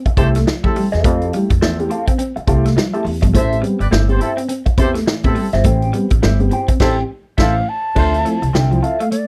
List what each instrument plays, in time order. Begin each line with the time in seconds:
0.06 muted clean electric guitar stroke, muted upright bass stroke, kick, closed hi-hat
0.17 upright bass C2, upright piano A3 E4 G4, clean electric guitar C4 G4 A4 E5, horn section G4 A4 C5, kick, closed hi-hat
0.35 clean electric guitar A3, muted clean electric guitar stroke, snare, closed hi-hat
0.46 upright piano F3, muted clean electric guitar stroke, snare
0.63 upright bass F3, upright piano A3 E4 G4, horn section C4 E4 A4, muted clean electric guitar stroke, kick
0.75 clean electric guitar G3, upright piano E4 G4, open hi-hat
0.92 upright bass E2, clean electric guitar C4 G4 A4 E5, snare, closed hi-hat
1.04 upright bass F2, upright piano F3, clean electric guitar A3 C4 G4 A4 F5, kick, closed hi-hat
1.21 upright piano E4 G4, closed hi-hat
1.33 clean electric guitar G3, upright piano A3 E4 G4, closed hi-hat
1.50 upright bass F2, muted clean electric guitar stroke, kick, closed hi-hat
1.61 upright bass E2, upright piano F3, clean electric guitar A3 C4 G4 A4 E5, snare
1.79 upright piano A3 E4 G4, muted clean electric guitar stroke, closed hi-hat
1.90 clean electric guitar C4 G4 A4 F5, upright piano E4 G4, muted clean electric guitar stroke, closed hi-hat
2.07 clean electric guitar C4, muted clean electric guitar stroke, kick, closed hi-hat
2.19 clean electric guitar C4, closed hi-hat
2.36 muted clean electric guitar stroke, muted upright bass stroke, closed hi-hat
2.47 upright bass C2, upright piano A3 E4 G4, clean electric guitar C4 G4 A4 F5, kick, closed hi-hat
2.65 clean electric guitar A3, muted clean electric guitar stroke, snare, closed hi-hat
2.76 upright piano F3, clean electric guitar G3, muted clean electric guitar stroke, snare
2.94 upright piano A3 E4 G4, clean electric guitar C4 G4 A4 E5, closed hi-hat
3.05 upright bass E2, upright piano E4 G4, muted clean electric guitar stroke, open hi-hat
3.22 upright bass G1, clean electric guitar F3, muted clean electric guitar stroke, kick, closed hi-hat
3.34 upright bass A1, upright piano A2 E3, clean electric guitar A3 E4 G4 C5 E5, horn section A4 C5 E5, kick, closed hi-hat
3.51 upright piano C4 G4, closed hi-hat
3.62 clean electric guitar G3, upright piano B3 C4 G4, closed hi-hat
3.80 upright bass G1, horn section G4 B4 D5, muted clean electric guitar stroke, closed hi-hat
3.91 upright bass G1, upright piano A2 E3, clean electric guitar A3 E4 G4 C5 E5, snare
4.08 upright piano B3 C4 G4, horn section G4 A4 C5, muted clean electric guitar stroke, closed hi-hat
4.20 upright piano C4 G4, horn section C4 E4 A4, clean electric guitar E4 G4 C5 E5, muted clean electric guitar stroke, closed hi-hat
4.37 clean electric guitar C4, muted clean electric guitar stroke, closed hi-hat
4.49 clean electric guitar C4, closed hi-hat
4.66 muted clean electric guitar stroke, muted upright bass stroke, kick, closed hi-hat
4.78 upright bass E2, upright piano B3 C4 G4, clean electric guitar E4 G4 C5 E5, horn section G4 A4 C5, kick, closed hi-hat
4.94 clean electric guitar A3, muted clean electric guitar stroke, snare, closed hi-hat
5.06 upright piano A2 E3, muted clean electric guitar stroke, snare
5.23 upright bass A2, upright piano B3 C4 G4, horn section C4 E4 A4, muted clean electric guitar stroke, kick, closed hi-hat
5.35 clean electric guitar G3, upright piano C4 G4, open hi-hat
5.52 upright bass G1, clean electric guitar E4 G4 C5 E5, snare, closed hi-hat
5.64 upright bass A1, upright piano A2 E3, clean electric guitar A3 E4 G4 C5 G5, kick, closed hi-hat
5.82 upright piano C4 G4, closed hi-hat
5.93 clean electric guitar G3, upright piano B3 C4 G4, closed hi-hat
6.10 upright bass A1, muted clean electric guitar stroke, kick, closed hi-hat
6.22 upright bass G1, upright piano A2 E3, clean electric guitar A3 E4 G4 C5 E5, snare
6.40 upright piano B3 C4 G4, muted clean electric guitar stroke, closed hi-hat
6.51 upright piano C4 G4, clean electric guitar E4 G4 C5 G5, muted clean electric guitar stroke, closed hi-hat
6.68 clean electric guitar C4, muted clean electric guitar stroke, kick, closed hi-hat
6.80 upright bass A1, upright piano C4 G4, horn section C4 E4 A4, clean electric guitar E4 G4 C5 G5, kick, snare, crash
7.38 upright bass A1, upright piano A2 E3, horn section C4 E4 A4, clean electric guitar E4 G4 C5 E5, flute F5, kick, snare, crash
7.69 flute A5
7.95 upright bass D2, upright piano D3, clean electric guitar C4 D4 F4 A4 E5, horn section F4 A4 C5, kick, crash
8.13 upright piano C4 E4, muted clean electric guitar stroke, closed hi-hat
8.25 upright piano F3 C4 E4, clean electric guitar A3, closed hi-hat
8.42 upright bass C2, muted clean electric guitar stroke, closed hi-hat
8.53 upright bass C2, upright piano D3, clean electric guitar C4 F4 A4 E5, flute G5, snare
8.71 clean electric guitar F3, upright piano F3 C4 E4, muted clean electric guitar stroke, closed hi-hat
8.82 clean electric guitar C4 F4 A4 E5, upright piano C4 E4, flute F5, muted clean electric guitar stroke, closed hi-hat
9.00 clean electric guitar A3, flute F5, muted clean electric guitar stroke, closed hi-hat
9.11 clean electric guitar A3, flute D5, closed hi-hat